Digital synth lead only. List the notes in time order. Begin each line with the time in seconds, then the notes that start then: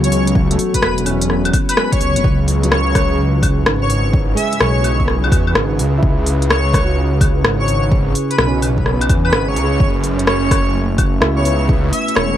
0.04 C#5
0.74 B4
0.82 B4
1.69 B4
1.92 C#5
2.71 C#5
3.81 C#5
4.36 E5
4.60 C#5
6.49 C#5
7.60 C#5
8.30 B4
8.39 B4
9.24 B4
9.48 C#5
10.26 C#5
11.36 C#5
11.92 E5
12.15 C#5